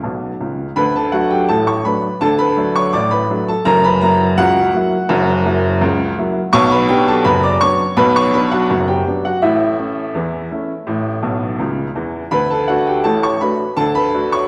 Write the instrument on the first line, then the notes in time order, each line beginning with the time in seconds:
upright piano
Already playing: A4 D5
0.03 B1 B2
0.40 C#2 C#3
0.76 D2 D3 B4 B5
0.96 A4 A5
1.12 F#3 A3 D4 F#4 F#5
1.31 G4 G5
1.49 A1 A2 A4 A5
1.67 C#5 C#6
1.85 F#3 A3 D4 B4 B5
2.21 D2 D3 A4 A5
2.39 B4 B5
2.56 F#3 A3 D4
2.76 C#5 C#6
2.93 A1 A2 D5 D6
3.11 B4 B5
3.30 F#3 A3 D4
3.48 A4 A5
3.65 F#1 F#2 A#4 A#5
3.84 B4 B5
4.01 F#3 A#3 E4 A#4 A#5
4.38 C#2 C#3 F#4 F#5
4.74 F#3 A#3 E4
5.09 F#1 F#2
5.45 F#3 A#3 E4
5.81 C#2 C#3
6.18 F#3 A#3 E4
6.53 B1 B2 C#5 C#6
6.71 B4 B5
6.89 F#3 B3 D4 G4 G5
7.08 A4 A5
7.24 F#1 F#2 B4 B5
7.43 D5 D6
7.61 F#3 B3 D4 C#5 C#6
7.97 B1 B2 B4 B5
8.16 C#5 C#6
8.34 F#3 B3 D4 B4 B5
8.51 F#4 F#5
8.70 F#1 F#2
8.88 G4 G5
9.06 F#3 B3 D4
9.25 F#4 F#5
9.42 A1 A2 E4 E5
9.79 A3 C#4 E4
10.15 E2 E3
10.51 A3 C#4 E4
10.87 A1 A2
11.23 B1 B2
11.59 C#2 C#3
11.95 E2 E3
12.31 D2 D3 B4 B5
12.50 A4 A5
12.68 A3 D4 F#4 F#5
12.87 G4 G5
13.04 A1 A2 A4 A5
13.23 C#5 C#6
13.41 A3 D4 F#4 B4 B5
13.77 D2 D3 A4 A5
13.95 B4 B5
14.14 A3 D4 F#4
14.32 C#5 C#6